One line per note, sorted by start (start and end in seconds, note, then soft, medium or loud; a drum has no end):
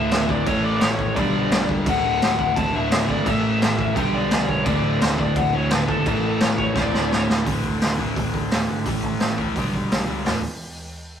0.00 0.11 D1 loud
0.00 0.28 D2 medium
0.00 0.46 D2 medium
0.00 0.11 A2 medium
0.00 0.28 A2 loud
0.00 0.45 A2 loud
0.00 0.11 D3 medium
0.00 0.26 D3 loud
0.00 0.48 D3 medium
0.00 0.31 E5 medium
0.11 0.28 D1 loud
0.11 0.45 D2 medium
0.11 0.44 A2 medium
0.11 0.47 D3 medium
0.11 snare loud
0.11 crash medium
0.27 0.45 D1 medium
0.27 0.44 D2 medium
0.27 0.43 A2 medium
0.27 0.45 D3 medium
0.27 0.46 D5 loud
0.27 kick medium
0.45 0.79 A1 loud
0.45 1.15 A2 medium
0.45 1.16 E3 medium
0.45 1.16 A3 loud
0.45 0.63 C#5 loud
0.45 kick loud
0.45 crash medium
0.63 0.81 D5 loud
0.81 1.14 A1 loud
0.81 1.15 C#5 loud
0.81 snare loud
0.81 crash medium
0.99 kick medium
1.15 1.33 B1 medium
1.15 1.85 G2 loud
1.15 1.86 D3 loud
1.15 1.86 G3 loud
1.15 1.65 D5 medium
1.15 kick loud
1.15 crash medium
1.35 1.51 B1 loud
1.51 1.68 B1 medium
1.51 snare loud
1.51 crash medium
1.69 1.85 C#2 medium
1.69 kick loud
1.86 2.03 D1 loud
1.86 2.73 D2 loud
1.86 2.73 A2 medium
1.86 2.72 D3 loud
1.86 2.38 F#5 loud
1.86 kick loud
1.86 crash medium
2.05 2.21 D1 medium
2.22 2.38 D1 medium
2.22 snare loud
2.22 crash medium
2.39 2.55 D1 medium
2.39 2.57 F#5 loud
2.39 kick medium
2.56 2.73 D1 loud
2.56 2.74 A5 loud
2.56 kick loud
2.56 crash medium
2.73 2.91 D1 loud
2.73 2.90 D2 medium
2.73 2.91 A2 medium
2.73 2.90 D3 medium
2.73 3.07 E5 loud
2.91 3.08 D1 loud
2.91 3.25 D2 medium
2.91 3.24 A2 medium
2.91 3.27 D3 medium
2.91 snare loud
2.91 crash medium
3.07 3.25 G#1 medium
3.07 3.24 A2 medium
3.07 3.24 D3 medium
3.07 3.28 D5 medium
3.07 kick medium
3.11 3.24 D2 medium
3.25 3.58 A1 medium
3.25 3.95 A2 medium
3.25 3.95 E3 loud
3.25 3.96 A3 loud
3.25 3.80 E5 loud
3.25 kick loud
3.25 crash medium
3.62 3.94 A1 loud
3.62 snare loud
3.62 crash medium
3.79 3.98 E5 loud
3.79 kick medium
3.95 4.12 B1 medium
3.95 4.64 G2 loud
3.95 4.65 D3 loud
3.95 4.66 G3 loud
3.95 4.12 G5 loud
3.95 kick loud
3.95 crash medium
4.14 4.30 B1 medium
4.14 4.46 D5 medium
4.31 4.47 B1 loud
4.31 snare loud
4.31 crash medium
4.48 4.65 B1 loud
4.48 4.64 C#5 medium
4.48 kick medium
4.65 4.82 D1 loud
4.65 5.52 D2 medium
4.65 5.52 A2 medium
4.65 5.52 D3 loud
4.65 4.98 D5 loud
4.65 kick loud
4.65 crash medium
4.85 5.00 D1 medium
5.00 5.17 D1 loud
5.00 snare loud
5.00 crash medium
5.18 5.35 D1 medium
5.18 5.37 D5 medium
5.18 kick medium
5.36 5.52 D1 loud
5.36 5.53 F#5 loud
5.36 kick loud
5.36 crash medium
5.53 5.70 D1 loud
5.53 5.71 D2 medium
5.53 5.70 A2 medium
5.53 5.70 D3 medium
5.53 5.70 C#5 medium
5.71 5.87 D1 loud
5.71 6.05 D2 medium
5.71 6.05 A2 medium
5.71 5.88 B4 medium
5.71 snare loud
5.71 crash medium
5.75 6.07 D3 medium
5.87 6.05 G1 medium
5.87 6.04 D2 medium
5.87 6.03 A2 medium
5.87 6.04 D3 medium
5.87 6.42 A4 medium
5.87 kick medium
6.06 6.38 A1 loud
6.06 6.74 A2 medium
6.06 6.76 E3 loud
6.06 6.76 A3 loud
6.06 kick loud
6.06 crash medium
6.40 6.73 A1 loud
6.40 6.46 C#5 medium
6.40 snare loud
6.40 crash medium
6.58 6.74 C#5 medium
6.58 kick medium
6.75 6.92 D1 medium
6.75 7.43 D2 loud
6.75 7.45 A2 loud
6.75 7.46 D3 loud
6.75 7.11 D5 medium
6.75 kick loud
6.75 snare medium
6.94 7.10 D1 medium
6.94 snare medium
7.11 7.27 D1 medium
7.11 7.24 C#5 medium
7.11 snare loud
7.29 7.45 D1 medium
7.29 snare loud
7.45 7.60 D1 medium
7.45 7.97 D2 medium
7.45 7.98 A2 medium
7.45 7.97 D3 medium
7.45 kick loud
7.45 open hi-hat medium
7.64 7.78 D1 medium
7.64 kick medium
7.81 7.96 D1 medium
7.81 snare loud
7.81 open hi-hat medium
7.98 8.13 D1 medium
7.98 8.85 D2 medium
7.98 8.84 A2 medium
7.98 8.85 D3 medium
7.98 kick medium
8.16 8.31 D1 medium
8.16 kick loud
8.16 open hi-hat medium
8.34 8.48 D1 medium
8.34 kick medium
8.51 8.66 D1 medium
8.51 8.85 D2 medium
8.51 8.84 A2 medium
8.51 8.87 D3 medium
8.51 snare loud
8.51 open hi-hat medium
8.69 8.83 G#1 medium
8.85 9.15 A1 medium
8.85 9.37 A2 medium
8.85 9.37 E3 loud
8.85 9.36 A3 medium
8.85 kick loud
8.85 open hi-hat medium
9.03 kick medium
9.20 9.35 A1 medium
9.20 snare loud
9.20 open hi-hat soft
9.37 9.53 C#2 medium
9.37 9.54 A2 medium
9.37 9.55 E3 medium
9.37 9.55 A3 medium
9.37 kick medium
9.55 9.71 B1 medium
9.55 10.07 G2 loud
9.55 10.07 D3 medium
9.55 10.05 G3 loud
9.55 kick loud
9.55 open hi-hat soft
9.74 9.88 B2 medium
9.74 kick medium
9.91 10.06 B1 medium
9.91 snare loud
9.91 open hi-hat medium
10.07 10.23 C#2 medium
10.07 10.24 G2 medium
10.07 10.25 D3 medium
10.07 10.24 G3 medium
10.25 10.43 D1 medium
10.25 10.40 D2 medium
10.25 10.40 A2 medium
10.25 10.41 D3 loud
10.25 snare loud
10.25 floor tom loud
10.25 open hi-hat medium